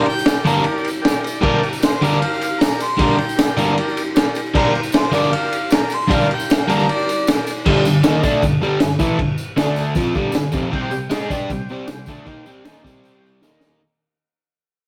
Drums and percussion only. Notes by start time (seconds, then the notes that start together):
0.06 ride, tambourine
0.19 tambourine
0.26 snare, ride, tambourine
0.38 tambourine
0.45 ride, tambourine
0.59 tambourine
0.64 ride
0.69 tambourine
0.78 tambourine
0.84 ride, tambourine
1.05 snare, ride, tambourine
1.24 ride, tambourine
1.35 tambourine
1.43 kick, crash
1.63 ride, tambourine
1.73 tambourine
1.82 snare, ride, tambourine
1.94 tambourine
2.02 ride, tambourine
2.13 tambourine
2.22 ride
2.34 tambourine
2.41 ride, tambourine
2.61 snare, ride, tambourine
2.80 ride, tambourine
2.91 tambourine
2.99 kick, ride
3.18 ride, tambourine
3.29 tambourine
3.39 snare, ride, tambourine
3.49 tambourine
3.57 ride, tambourine
3.68 tambourine
3.78 ride
3.89 tambourine
3.97 ride, tambourine
4.16 snare, ride, tambourine
4.35 ride, tambourine
4.46 tambourine
4.55 kick, crash
4.75 ride, tambourine
4.83 tambourine
4.92 snare, ride, tambourine
5.02 tambourine
5.13 ride, tambourine
5.33 ride
5.53 ride, tambourine
5.70 snare, ride, tambourine
5.90 ride, tambourine
6.01 tambourine
6.10 kick, ride, tambourine
6.21 tambourine
6.31 ride
6.40 tambourine
6.50 snare, ride, tambourine
6.59 tambourine
6.69 ride, tambourine
6.79 tambourine
6.89 ride
6.99 tambourine
7.09 ride, tambourine
7.19 tambourine
7.27 snare, ride, tambourine
7.37 tambourine
7.47 ride, tambourine
7.66 kick, crash
7.85 tambourine
8.03 snare, tambourine, crash
8.23 kick, tambourine
8.42 kick, tambourine, crash
8.63 tambourine
8.80 snare, tambourine, crash
8.99 kick, tambourine
9.19 kick, crash
9.38 tambourine
9.57 snare, tambourine, crash
9.76 tambourine
9.95 kick, tambourine, crash
10.15 kick, tambourine
10.32 snare, tambourine, crash
10.52 kick, tambourine
10.73 kick, crash
10.91 tambourine
11.11 snare, tambourine, crash
11.30 kick, tambourine
11.50 kick, tambourine, crash
11.69 tambourine
11.88 snare, tambourine, crash
12.06 kick, tambourine
12.26 kick, tambourine, crash
12.46 tambourine
12.65 snare, tambourine, crash
12.84 kick, tambourine
13.04 tambourine, crash
13.26 tambourine
13.42 snare, tambourine
13.61 snare, tambourine